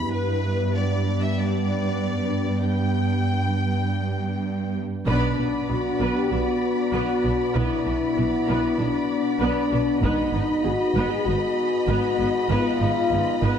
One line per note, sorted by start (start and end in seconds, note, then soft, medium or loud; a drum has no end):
0.00 0.13 E4 medium
0.00 0.12 G4 medium
0.00 0.13 B5 medium
0.13 4.84 G2 soft
0.13 5.04 B3 medium
0.13 5.06 D4 medium
0.13 5.04 G4 medium
0.13 0.74 B4 medium
0.13 5.04 B4 medium
0.75 1.21 D5 medium
1.22 1.37 E5 medium
1.38 2.61 D5 medium
2.61 4.77 G5 medium
5.07 5.37 B1 medium
5.07 5.36 B2 medium
5.07 9.98 B3 medium
5.07 5.36 B3 medium
5.07 9.99 D4 medium
5.07 5.66 D4 medium
5.07 9.99 F#4 medium
5.07 5.36 B4 medium
5.07 9.99 B4 medium
5.07 9.99 D5 medium
5.07 9.99 B5 soft
5.07 taiko soft
5.38 5.47 B1 soft
5.38 5.47 B2 soft
5.38 5.46 B3 soft
5.38 5.46 D4 soft
5.69 5.78 B1 soft
5.69 5.77 B2 soft
5.69 5.77 B3 soft
5.69 5.77 F#4 soft
5.69 6.15 F#4 medium
6.00 6.09 B1 soft
6.00 6.08 B2 medium
6.00 6.29 B3 soft
6.00 6.29 B4 soft
6.17 6.32 G4 medium
6.31 6.40 B1 soft
6.31 6.39 B2 soft
6.31 6.39 B3 soft
6.31 6.39 D4 soft
6.31 7.56 F#4 medium
6.93 7.02 B1 soft
6.93 7.01 B2 soft
6.93 7.22 B3 medium
6.93 7.22 B4 soft
7.24 7.33 B1 soft
7.24 7.33 B2 soft
7.24 7.32 B3 soft
7.24 7.32 D4 soft
7.55 7.64 B1 soft
7.55 7.63 B2 medium
7.55 7.84 B3 medium
7.55 8.79 E4 medium
7.55 7.84 B4 soft
7.86 7.95 B1 soft
7.86 7.94 B2 soft
7.86 7.94 B3 soft
7.86 7.94 D4 soft
8.17 8.26 B1 soft
8.17 8.26 B2 soft
8.17 8.25 B3 soft
8.17 8.25 F#4 soft
8.47 8.57 B1 soft
8.47 8.57 B2 medium
8.47 8.76 B3 soft
8.47 8.76 B4 soft
8.78 8.87 B1 soft
8.78 8.87 B2 soft
8.78 8.86 B3 soft
8.78 8.86 D4 soft
8.78 10.03 D4 medium
9.40 9.49 B1 medium
9.40 9.49 B2 soft
9.40 9.69 B3 medium
9.40 9.69 B4 medium
9.72 9.80 B1 soft
9.72 9.80 B2 soft
9.72 9.80 B3 soft
9.72 9.80 D4 soft
10.02 10.11 G#1 medium
10.02 10.11 G#2 medium
10.02 13.59 B3 soft
10.02 10.31 B3 medium
10.02 13.59 D#4 medium
10.02 10.63 D#4 medium
10.02 13.59 G#4 medium
10.02 13.59 B4 medium
10.02 10.32 B4 medium
10.02 13.59 D#5 soft
10.02 13.59 B5 soft
10.02 taiko medium
10.34 10.42 G#1 soft
10.34 10.42 G#2 soft
10.34 10.42 B3 soft
10.34 10.42 D#4 soft
10.64 10.73 G#1 soft
10.64 10.73 G#2 soft
10.64 10.73 B3 soft
10.64 11.11 F#4 medium
10.64 10.72 G#4 soft
10.95 11.03 G#1 medium
10.95 11.04 G#2 medium
10.95 11.24 B3 medium
10.95 11.24 B4 soft
11.10 11.26 G#4 medium
11.26 11.34 G#1 soft
11.26 11.34 G#2 soft
11.26 11.34 B3 soft
11.26 11.34 D#4 soft
11.26 12.50 F#4 medium
11.88 11.96 G#1 medium
11.88 11.97 G#2 medium
11.88 12.17 B3 medium
11.88 12.17 B4 medium
12.19 12.27 G#1 soft
12.19 12.27 G#2 soft
12.19 12.27 B3 medium
12.19 12.27 D#4 soft
12.50 12.58 G#1 medium
12.50 12.58 G#2 medium
12.50 12.79 B3 medium
12.50 13.56 F4 medium
12.50 12.79 B4 medium
12.81 12.89 G#1 soft
12.81 12.89 G#2 soft
12.81 12.89 B3 soft
12.81 12.89 D#4 soft
13.11 13.20 G#1 soft
13.11 13.19 G#2 soft
13.11 13.20 B3 soft
13.11 13.20 G#4 soft
13.43 13.51 G#1 medium
13.43 13.51 G#2 medium
13.43 13.59 B3 medium
13.43 13.59 B4 medium